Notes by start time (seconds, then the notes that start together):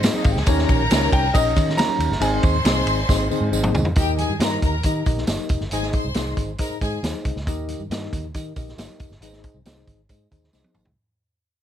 Already playing: C5 D#5 C6
0.02 C4 D#4 G#4 C5 D#5, snare, ride, tambourine, high conga
0.13 D#4 D#5, high conga
0.23 G#1 F4 F5, kick, ride, tambourine
0.30 G4 G5
0.36 C#2 G#4 G#5, snare
0.46 D#2 D#3 C#4 D#4 G4 A#4 C#5 A#5, kick, ride, tambourine, muted conga
0.58 snare
0.68 A#1, kick, ride, tambourine, muted conga
0.91 C#2 C#4 D#4 G4 A#4 C5, snare, ride, tambourine, high conga
0.97 C#5
1.12 C2 G5, kick, ride, tambourine, muted conga
1.34 A#1 C#4 D#4 G4 A#4 C#5 D#5, kick, ride, tambourine, muted conga
1.55 D#3 C#4 D#4 G4 A#4 C#5, kick, ride, tambourine, low conga
1.69 snare
1.77 C#4 D#4 G4 A#4 C#5 A#5, snare, ride, tambourine, high conga
1.88 high conga
1.99 D#2, ride, tambourine
2.10 G1, snare
2.20 G#1 G#2 C4 D#4 G#4 C5 D#5 G#5 C6, ride, tambourine, muted conga
2.43 D#2, kick, ride, tambourine, muted conga
2.64 C2 C4 D#4 G#4 C5 C#5, snare, ride, tambourine, high conga
2.71 D#5
2.86 G#1, ride, tambourine, muted conga
3.09 G#1 C4 D#4 G#4 C5 D#5, kick, snare, tambourine, muted conga
3.30 C4 D#4 G#4 C5 D#5, muted fingered electric bass stroke, tambourine, low conga
3.41 G#2
3.51 G#1 C4 D#4 G#4 C5 D#5, tambourine, high conga
3.63 mid tom, high conga
3.73 C#2, floor tom, tambourine
3.85 floor tom
3.96 D#2 D#3 D#4 F#4 G4 A#4 D#5 G5, kick, closed hi-hat, tambourine, muted conga
4.02 G4
4.18 G#4 G#5, closed hi-hat, tambourine, muted conga
4.29 G2
4.40 G2 D#4 G4 A#4 D#5 A#5, snare, closed hi-hat, tambourine, high conga
4.62 D#2 A#4 A#5, kick, closed hi-hat, tambourine, low conga
4.83 D#3 D#4 G4 A#4 D#5, kick, closed hi-hat, tambourine, muted conga
5.06 A#1 D#4 G4 A#4 D#5, kick, closed hi-hat, tambourine, low conga
5.18 snare
5.27 G1 D#4 G4 A#4 D#5, snare, closed hi-hat, tambourine, high conga
5.39 high conga
5.49 F1, kick, closed hi-hat, tambourine
5.60 G1, snare
5.71 G#1 G#2 D#4 G#4 C5 D#5 G#5, closed hi-hat, tambourine, muted conga
5.83 snare
5.93 C5 C6, kick, closed hi-hat, tambourine, muted conga
6.05 C2
6.14 C2 D#4 G#4 C5 D#5, snare, closed hi-hat, tambourine, high conga
6.37 G#1, kick, closed hi-hat, tambourine, low conga
6.58 D#4 G#4 A#4 C5 D#5 A#5, kick, closed hi-hat, tambourine, muted conga
6.70 muted fingered electric bass stroke
6.81 G#2 D#4 G#4 C5 D#5 G#5, kick, closed hi-hat, tambourine, low conga
7.03 D#2 D#4 G#4 C5 C#5, snare, closed hi-hat, tambourine, high conga
7.09 D#5
7.14 high conga
7.25 C2, kick, closed hi-hat, tambourine
7.36 C#2, snare
7.47 D#2 D#3 D#4 G4 A#4 D#5, kick, closed hi-hat, tambourine, muted conga
7.68 closed hi-hat, tambourine, muted conga
7.80 G2
7.90 G2 D#4 G4 A#4 D#5, snare, closed hi-hat, tambourine, high conga
8.13 D#2, kick, closed hi-hat, tambourine, muted conga, low conga
8.34 D#3 D#4 G4 A#4 D#5, kick, closed hi-hat, tambourine, muted conga
8.56 A#1 D#4 G4 A#4 D#5, kick, closed hi-hat, tambourine, low conga
8.68 snare
8.78 G1 D#4 G4 A#4 D#5, snare, closed hi-hat, tambourine, high conga
8.89 high conga
9.00 F1, kick, closed hi-hat, tambourine
9.10 G1, snare
9.21 G#1 G#2 D#4 G#4 B4 D#5, closed hi-hat, tambourine, muted conga
9.28 C5
9.33 snare
9.43 kick, closed hi-hat, tambourine, muted conga
9.54 C2
9.65 C2 D#4 G#4 C5 D#5, snare, closed hi-hat, tambourine, high conga
9.87 G#1, kick, closed hi-hat, tambourine, low conga
10.09 G#2 D#4 G#4 C5 D#5, kick, closed hi-hat, tambourine, muted conga
10.31 D#2 D#4 G#4 C5 D#5, kick, closed hi-hat, tambourine, low conga
10.44 snare
10.53 C2 D#4 G#4 C5 D#5, snare, tambourine, high conga
10.64 high tom, high conga
10.74 G#1, mid tom, tambourine, high conga
10.85 C2, floor tom